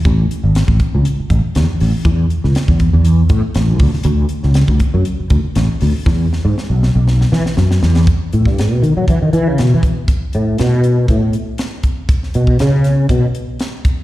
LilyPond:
<<
  \new Staff \with { instrumentName = "Fretless electric bass" } { \clef bass \time 4/4 \key a \lydian \tempo 4 = 120 a,,8 r16 gis,,8 a,,16 r16 cis,16 r8 a,,16 r16 e,16 r16 a,,16 r16 | e,8 r16 cis,16 r16 e,8 e,8. a,16 r16 a,,8 d,16 r16 | d,8 r16 cis,8 d,16 r16 fis,16 r8 d,16 r16 a,,16 r16 d,16 r16 | e,8 r16 gis,16 r16 b,,8 b,,8. e16 r16 fis,8 e,8 |
r8 a,16 g,16 gis,16 b,16 dis16 fis16 e16 dis16 e16 cis16 b,16 e16 r8 | r8 a,8 b,4 a,8 r4. | r8 b,8 cis4 b,8 r4. | }
  \new DrumStaff \with { instrumentName = "Drums" } \drummode { \time 4/4 <hh bd>8 hh8 <hh sn>16 bd16 <hh bd>8 hh8 <hh bd>8 <hh sn>8 hho8 | <hh bd>8 hh16 sn16 <hh sn>16 bd16 <hh bd>8 hh8 <hh bd>8 <hh sn>8 <hho bd>16 sn16 | hh8 hh16 sn16 <hh sn>16 bd16 <hh bd>8 hh8 <hh bd>8 <hh sn>8 <hho sn>8 | <bd sn>8 sn8 sn8 sn8 sn16 sn16 sn16 sn16 sn16 sn16 sn16 sn16 |
<hh bd>8 hh16 <bd sn>16 <hh sn>8 hh8 <hh bd>8 hh8 <hh sn>8 <hh bd>8 | <hh bd>8 hh8 <hh sn>8 hh8 <hh bd>8 hh8 <hh sn>8 <hh bd>8 | <hh bd>16 sn16 hh16 bd16 <hh sn>8 <hh sn>8 <hh bd>8 hh8 <hh sn>8 <hh bd>8 | }
>>